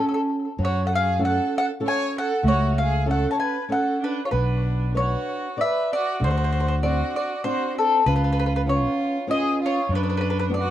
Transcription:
0.00 0.25 C#4 medium
0.00 0.46 C#4 soft
0.00 0.46 F#4 soft
0.00 0.46 A4 medium
0.09 0.13 A4 soft
0.14 0.20 A4 medium
0.58 1.39 F#2 loud
0.58 1.18 F#3 medium
0.63 0.84 F#4 medium
0.63 0.85 C#5 medium
0.84 0.91 A4 medium
0.84 0.92 F#5 medium
0.94 1.20 G#4 medium
0.94 1.21 F5 medium
1.19 1.68 C#4 soft
1.19 1.69 F#4 soft
1.19 1.69 A4 medium
1.25 1.52 A4 medium
1.25 1.52 F#5 medium
1.58 1.70 A4 medium
1.58 1.65 F#5 medium
1.80 2.30 C#4 soft
1.80 2.30 F#4 soft
1.80 2.30 A4 medium
1.87 2.14 C#5 medium
1.87 2.14 G#5 medium
2.18 2.44 A4 medium
2.18 2.44 F#5 medium
2.43 3.25 C#2 loud
2.43 3.03 A3 medium
2.43 2.75 F#4 medium
2.48 2.78 C#5 medium
2.78 3.07 G#4 medium
2.78 3.05 F5 medium
3.06 3.56 C#4 soft
3.06 3.56 F#4 soft
3.06 3.56 A4 medium
3.10 3.31 A4 medium
3.10 3.30 F#5 medium
3.31 3.38 C#5 soft
3.31 3.38 A5 medium
3.40 3.68 B4 medium
3.40 3.70 G#5 medium
3.69 4.19 C#4 soft
3.69 4.19 F#4 soft
3.69 4.20 A4 soft
3.69 4.00 A4 medium
3.69 4.15 F#5 medium
4.01 4.23 D4 medium
4.01 4.25 B4 medium
4.25 4.32 F4 soft
4.25 4.31 C#5 medium
4.31 5.15 B1 medium
4.31 4.93 B3 soft
4.31 4.92 D4 medium
4.31 4.91 B4 medium
4.94 5.46 D4 medium
4.94 5.45 B4 soft
4.94 5.46 C#5 soft
4.94 5.55 C#5 medium
4.99 5.56 F#4 medium
5.57 6.08 B4 soft
5.57 6.08 D5 medium
5.61 5.91 B4 medium
5.61 5.90 E5 medium
5.93 6.21 F#4 medium
5.93 6.20 D5 medium
6.20 7.02 D2 medium
6.20 6.81 D3 medium
6.20 6.80 F#4 medium
6.24 6.29 C5 medium
6.31 6.36 C5 medium
6.37 6.43 C5 medium
6.44 6.51 C5 medium
6.52 6.59 C5 medium
6.60 6.67 C5 medium
6.68 6.75 C5 medium
6.83 7.32 C4 soft
6.83 7.32 D4 soft
6.83 7.33 F#4 medium
6.83 7.14 F#4 medium
6.83 7.13 D5 medium
7.16 7.44 F#4 medium
7.16 7.43 D5 medium
7.44 7.94 C4 soft
7.44 7.94 D4 soft
7.44 7.94 F#4 soft
7.44 7.75 F#4 medium
7.44 7.77 C5 medium
7.78 8.05 C4 medium
7.78 8.05 A4 medium
8.06 8.86 C#2 medium
8.06 8.66 C#3 soft
8.06 8.63 F4 medium
8.06 8.14 B4 medium
8.16 8.22 B4 medium
8.24 8.30 B4 medium
8.32 8.38 B4 medium
8.39 8.45 B4 medium
8.46 8.52 B4 medium
8.56 8.61 B4 medium
8.66 9.16 B3 soft
8.66 9.16 C#4 soft
8.66 9.16 F4 medium
8.66 9.30 C#5 medium
8.72 9.27 F4 medium
9.27 9.77 B3 soft
9.27 9.78 C#4 soft
9.27 9.78 F4 medium
9.27 9.59 G#4 medium
9.27 9.60 D#5 medium
9.62 9.89 F4 medium
9.62 9.94 C#5 medium
9.89 10.70 F#2 medium
9.89 10.50 F#3 soft
9.94 10.50 D4 medium
9.94 10.01 B4 medium
10.03 10.08 B4 medium
10.10 10.16 B4 medium
10.17 10.20 B4 medium
10.17 10.29 B4 medium
10.30 10.37 B4 medium
10.39 10.45 B4 medium
10.49 10.70 B3 soft
10.49 10.70 D4 soft
10.49 10.70 F#4 medium
10.54 10.70 D5 medium
10.59 10.70 F#4 medium

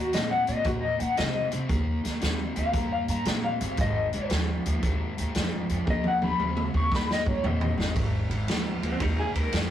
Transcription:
0.00 0.11 D#2 medium
0.00 0.11 D#3 medium
0.00 0.11 A#3 medium
0.00 0.13 F#4 medium
0.13 0.44 A#2 medium
0.13 0.44 D#3 medium
0.13 0.44 C4 loud
0.13 0.30 D#5 medium
0.13 snare loud
0.13 closed hi-hat medium
0.31 0.47 F#5 medium
0.47 0.63 A#2 medium
0.47 0.62 D#3 medium
0.47 0.63 C4 medium
0.47 0.65 D#5 medium
0.47 closed hi-hat medium
0.64 0.96 A#2 medium
0.64 0.96 D#3 medium
0.64 0.96 A#3 medium
0.64 0.82 F#4 medium
0.64 kick loud
0.64 closed hi-hat medium
0.81 1.00 D#5 medium
0.98 1.16 A#2 medium
0.98 1.15 D#3 medium
0.98 1.15 A#3 medium
0.98 1.16 F#5 medium
0.98 closed hi-hat medium
1.16 1.49 C3 medium
1.16 1.48 D#3 medium
1.16 1.48 C4 medium
1.16 1.51 D#5 medium
1.16 snare loud
1.16 closed hi-hat medium
1.51 1.68 C3 medium
1.51 1.67 D#3 medium
1.51 1.67 C4 medium
1.51 closed hi-hat medium
1.68 2.00 D#2 medium
1.68 2.00 D#3 medium
1.68 2.00 A#3 medium
1.68 kick loud
1.68 closed hi-hat medium
2.04 2.20 D#2 medium
2.04 2.19 D#3 medium
2.04 2.20 A#3 medium
2.04 snare soft
2.04 closed hi-hat medium
2.21 2.53 D#2 medium
2.21 2.52 D#3 medium
2.21 2.53 C4 loud
2.21 snare loud
2.21 closed hi-hat medium
2.56 2.72 D#2 medium
2.56 2.72 D#3 medium
2.56 2.72 C4 medium
2.56 2.91 F5 medium
2.56 closed hi-hat medium
2.73 3.04 G2 medium
2.73 3.05 D#3 medium
2.73 3.05 A#3 medium
2.73 kick loud
2.73 closed hi-hat medium
2.93 3.09 F5 medium
3.08 3.24 G2 medium
3.08 3.24 D#3 medium
3.08 3.24 A#3 loud
3.08 3.43 A#5 medium
3.08 closed hi-hat medium
3.25 3.56 A#2 medium
3.25 3.57 D#3 medium
3.25 3.57 C4 medium
3.25 snare loud
3.25 closed hi-hat medium
3.45 3.78 F5 medium
3.61 3.76 G1 medium
3.61 3.76 D#3 medium
3.61 3.76 C4 medium
3.61 closed hi-hat medium
3.77 4.09 G#1 medium
3.77 4.09 G#2 medium
3.77 4.10 D#3 medium
3.77 4.30 D#5 medium
3.77 kick loud
3.77 closed hi-hat medium
4.13 4.29 G#1 medium
4.13 4.29 G#2 medium
4.13 4.29 D#3 medium
4.13 closed hi-hat medium
4.30 4.61 D#2 medium
4.30 4.62 G#2 medium
4.30 4.62 F3 medium
4.30 snare loud
4.30 closed hi-hat medium
4.66 4.81 D#2 medium
4.66 4.81 G#2 medium
4.66 4.81 F3 medium
4.66 closed hi-hat medium
4.82 5.14 D#2 medium
4.82 5.14 G#2 medium
4.82 5.14 D#3 medium
4.82 kick loud
4.82 closed hi-hat medium
5.17 5.34 D#2 medium
5.17 5.33 G#2 medium
5.17 5.33 D#3 medium
5.17 closed hi-hat medium
5.35 5.66 F2 medium
5.35 5.66 G#2 medium
5.35 5.66 F3 medium
5.35 snare loud
5.35 closed hi-hat medium
5.69 5.85 F2 medium
5.69 5.85 G#2 medium
5.69 5.85 F3 medium
5.69 closed hi-hat medium
5.87 6.18 D#2 medium
5.87 6.18 D#3 medium
5.87 6.19 A#3 medium
5.87 6.05 D#5 medium
5.87 kick loud
5.87 high tom medium
6.04 6.23 F#5 medium
6.04 high tom medium
6.22 6.37 D#2 medium
6.22 6.38 D#3 medium
6.22 6.38 A#3 medium
6.22 6.73 B5 medium
6.22 high tom medium
6.39 6.70 D#2 medium
6.39 6.70 D#3 medium
6.39 6.71 C4 medium
6.39 mid tom medium
6.57 mid tom medium
6.74 6.89 D#2 medium
6.74 6.89 D#3 medium
6.74 6.90 C4 medium
6.74 6.92 C#6 medium
6.74 kick medium
6.91 7.22 G2 medium
6.91 7.22 D#3 medium
6.91 7.23 A#3 medium
6.91 kick loud
6.91 snare medium
6.96 7.10 B5 medium
7.11 7.28 D#5 medium
7.11 snare medium
7.26 7.41 G2 medium
7.26 7.42 D#3 medium
7.26 7.42 A#3 medium
7.26 7.46 C#5 medium
7.26 kick medium
7.43 7.74 A#2 medium
7.43 7.75 D#3 medium
7.43 7.75 C4 medium
7.43 7.96 D#5 medium
7.43 floor tom medium
7.61 floor tom medium
7.78 7.93 G1 loud
7.78 7.94 D#3 medium
7.78 7.94 C4 medium
7.78 snare medium
7.95 8.27 G#1 medium
7.95 8.27 G#2 medium
7.95 8.27 D#3 medium
7.95 kick loud
7.95 ride medium
8.30 8.45 G#1 medium
8.30 8.46 G#2 medium
8.30 8.46 D#3 medium
8.30 ride medium
8.47 8.79 D#2 medium
8.47 8.79 G#2 medium
8.47 8.79 F3 medium
8.47 snare loud
8.47 ride medium
8.82 8.98 D#2 medium
8.82 8.98 G#2 medium
8.82 8.98 F3 medium
8.82 9.02 C4 medium
8.82 ride medium
9.00 9.31 D#2 medium
9.00 9.31 G#2 medium
9.00 9.32 D#3 medium
9.00 9.18 D#4 medium
9.00 kick loud
9.00 ride medium
9.19 9.36 G#4 medium
9.34 9.50 D#2 medium
9.34 9.50 G#2 medium
9.34 9.50 D#3 medium
9.34 9.69 A#4 medium
9.34 ride medium
9.52 9.70 F2 medium
9.52 9.70 G#2 medium
9.52 9.70 F3 medium
9.52 snare loud
9.52 ride medium

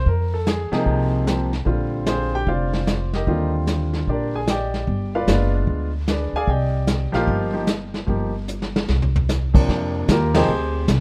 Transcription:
0.06 0.68 F2 medium
0.06 0.32 A#4 medium
0.06 brush sweep soft
0.06 kick soft
0.34 0.47 A4 medium
0.47 0.71 G#4 medium
0.47 snare medium
0.47 hi-hat pedal medium
0.71 1.23 C3 medium
0.71 1.24 F3 medium
0.71 1.24 A#3 medium
0.71 1.24 D#4 medium
0.71 1.23 G#4 medium
0.71 muted upright bass stroke soft
0.71 snare soft
0.86 1.62 C2 medium
0.86 brush sweep soft
0.86 kick soft
1.26 1.50 C3 medium
1.26 1.50 F3 soft
1.26 1.50 A#3 medium
1.26 1.50 C4 medium
1.26 snare medium
1.26 hi-hat pedal medium
1.53 snare soft
1.65 2.42 A#1 medium
1.65 2.78 D3 medium
1.65 2.78 G3 medium
1.65 2.07 C4 soft
1.65 2.07 F4 medium
1.65 brush sweep soft
1.65 kick soft
2.06 2.33 C4 medium
2.06 2.33 F4 medium
2.06 2.33 G#4 medium
2.06 2.32 C5 medium
2.06 snare medium
2.06 hi-hat pedal medium
2.35 2.48 G4 medium
2.35 2.47 G5 medium
2.46 3.23 F1 medium
2.46 3.10 F4 medium
2.46 3.10 C5 soft
2.46 3.10 D5 medium
2.46 3.10 F5 medium
2.46 brush sweep soft
2.46 kick soft
2.73 snare soft
2.87 snare medium
2.87 hi-hat pedal soft
3.13 3.51 D#4 medium
3.13 3.51 G4 medium
3.13 3.51 A#4 medium
3.13 3.51 D#5 medium
3.13 snare soft
3.27 4.03 D#2 medium
3.27 4.39 D3 medium
3.27 4.39 G3 soft
3.27 4.39 C4 soft
3.27 4.39 F4 medium
3.27 brush sweep soft
3.27 kick soft
3.67 snare soft
3.67 hi-hat pedal medium
3.93 snare soft
4.07 4.83 A#1 medium
4.07 4.34 D4 medium
4.07 4.34 G4 soft
4.07 4.34 A#4 soft
4.07 4.34 D5 medium
4.07 brush sweep soft
4.07 kick soft
4.35 4.48 G#4 medium
4.35 4.48 G#5 medium
4.47 5.11 G4 medium
4.47 5.11 D5 medium
4.47 4.86 D#5 medium
4.47 5.11 G5 medium
4.47 snare medium
4.47 hi-hat pedal medium
4.74 snare soft
4.87 5.25 G1 medium
4.87 brush sweep soft
4.87 kick soft
5.15 5.28 F4 medium
5.15 5.52 B4 medium
5.15 5.52 D5 medium
5.15 5.52 F5 medium
5.27 5.65 F#1 medium
5.27 5.88 G#3 medium
5.27 5.89 B3 soft
5.27 5.89 D4 medium
5.27 5.89 F4 medium
5.27 snare soft
5.27 hi-hat pedal medium
5.67 6.29 D2 medium
5.67 brush sweep soft
5.67 kick soft
6.07 6.34 D4 soft
6.07 6.34 G#4 soft
6.07 6.34 B4 soft
6.07 6.34 D5 soft
6.07 snare medium
6.07 hi-hat pedal soft
6.33 6.46 D2 medium
6.33 6.49 D5 medium
6.33 6.49 F5 medium
6.33 6.48 G#5 medium
6.37 6.49 G#4 medium
6.47 7.10 C2 medium
6.47 7.11 G4 medium
6.47 7.11 D5 medium
6.47 7.11 D#5 medium
6.47 7.11 G5 medium
6.47 brush sweep soft
6.47 kick soft
6.87 snare medium
6.87 hi-hat pedal medium
7.12 7.26 A#1 medium
7.12 7.50 F3 medium
7.12 7.50 A#3 medium
7.12 7.51 D#4 medium
7.12 7.52 F4 medium
7.12 7.51 G4 medium
7.12 7.52 F5 medium
7.12 snare soft
7.27 8.04 G1 medium
7.27 brush sweep soft
7.27 kick soft
7.53 7.66 F3 medium
7.53 7.66 A#3 soft
7.53 7.67 D#4 medium
7.53 7.67 G4 medium
7.67 snare medium
7.67 hi-hat pedal soft
7.94 snare soft
8.07 8.84 G1 medium
8.07 8.31 F3 soft
8.07 8.31 A#3 soft
8.07 8.31 D#4 soft
8.07 8.32 G4 medium
8.07 brush sweep soft
8.07 kick soft
8.48 hi-hat pedal medium
8.62 snare soft
8.76 snare medium
8.88 9.64 C2 medium
8.88 snare soft
9.02 floor tom soft
9.16 floor tom medium
9.29 snare soft
9.29 hi-hat pedal medium
9.54 10.05 C3 medium
9.54 10.05 F3 medium
9.54 10.05 A#3 medium
9.54 10.06 D4 medium
9.54 kick medium
9.54 crash medium
9.68 10.07 F2 medium
9.68 brush sweep medium
9.68 kick soft
9.68 snare soft
10.08 10.47 D#2 loud
10.08 10.33 A#3 medium
10.08 10.35 F4 medium
10.08 10.35 G4 medium
10.08 10.35 A#4 medium
10.08 kick soft
10.08 snare medium
10.08 hi-hat pedal medium
10.34 10.47 C3 medium
10.34 10.47 F3 medium
10.34 10.47 A#3 medium
10.34 10.86 C4 medium
10.34 10.48 D#4 medium
10.34 10.86 G4 medium
10.34 10.86 G#4 medium
10.34 10.85 C5 medium
10.34 snare medium
10.34 ride medium
10.48 10.87 D2 medium
10.48 brush sweep soft
10.88 11.00 C2 medium
10.88 kick soft
10.88 snare medium
10.88 hi-hat pedal medium

